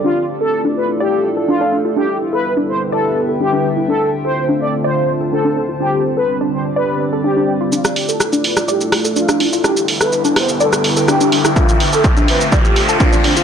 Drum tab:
HH |----------------|----------------|----------------|----------------|
SH |----------------|----------------|----------------|----------------|
SD |----------------|----------------|----------------|----------------|
BD |----------------|----------------|----------------|----------------|

HH |--o---o---o---o-|--o---o---o---o-|--o---o---o---o-|
SH |xx-xxx-xxx-xxx-x|xx-xxx-xxx-xxx-x|xx-xxx-xxx-xxx-x|
SD |-r--r--r--r--r--|r--r--r--r--r--r|----------------|
BD |----------------|----------------|o---o---o---o---|